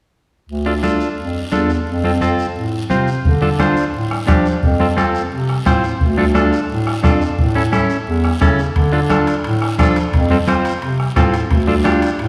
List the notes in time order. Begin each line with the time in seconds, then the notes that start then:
0.49 D2, long guiro
0.66 D4 F4 A4
0.83 D4 F4 A4, high conga, short guiro
1.00 short guiro
1.18 F2, long guiro
1.52 E2 D4 F4 A4, high conga, short guiro
1.70 short guiro
1.87 F2, long guiro
2.04 C4 F4 A4, high conga
2.21 C4 F4 A4, high conga, short guiro
2.39 short guiro
2.56 A2, long guiro
2.90 C3 C4 F4 C5, high conga, short guiro
3.08 short guiro
3.25 D3, bombo low, long guiro
3.42 D4 F4 A4, high conga
3.59 D4 F4 C5, bombo rim, high conga, short guiro
3.77 short guiro
3.94 A2, long guiro
4.11 bombo rim
4.27 F3 D4 F4 G4, bombo low, bombo rim, high conga, short guiro
4.46 short guiro
4.63 F2, bombo low, long guiro
4.80 C4 F4 A4, high conga
4.97 C4 F4 A4, bombo rim, high conga, short guiro
5.15 short guiro
5.32 C3, long guiro
5.50 bombo rim
5.66 A2 C4 F4 C5, bombo low, bombo rim, high conga, short guiro
5.84 short guiro
6.01 D2, bombo low, long guiro
6.17 D4 F4 A4, high conga
6.35 D4 F4 A4, bombo rim, high conga, short guiro
6.53 short guiro
6.70 A2, long guiro
6.87 bombo rim
7.03 F2 D4 F4 A4, bombo low, bombo rim, high conga, short guiro
7.21 short guiro
7.38 A2, bombo low, long guiro
7.55 C#4 E4 A4
7.72 C#4 E4 A4, bombo rim, high conga, short guiro
7.90 short guiro
8.07 E2, long guiro
8.24 bombo rim
8.41 C#3 C#4 E4 A4, bombo low, bombo rim, high conga, short guiro
8.59 short guiro
8.76 D3, bombo low, high timbale, long guiro
8.92 D4 F4 A4
9.10 D4 F4 A4, bombo rim, high conga, high timbale, short guiro
9.27 high timbale, short guiro
9.44 A2, high timbale, long guiro
9.62 bombo rim
9.79 F3 D4 F4 A4, bombo low, bombo rim, high conga, high timbale, short guiro
9.96 high timbale, short guiro
10.13 F2, bombo low, high timbale, long guiro
10.31 C4 F4 A4, high conga
10.47 C4 F4 C5, bombo rim, high conga, high timbale, short guiro
10.65 high timbale, short guiro
10.82 C3, high timbale, long guiro
11.00 bombo rim
11.16 A2 C4 F4 A4, bombo low, bombo rim, high conga, high timbale, short guiro
11.34 high timbale, short guiro
11.51 D2, bombo low, high timbale, long guiro
11.67 D4 F4 A4, high conga
11.84 D4 F4 G4, bombo rim, high conga, high timbale, short guiro
12.02 high timbale, short guiro
12.19 A2, high timbale, long guiro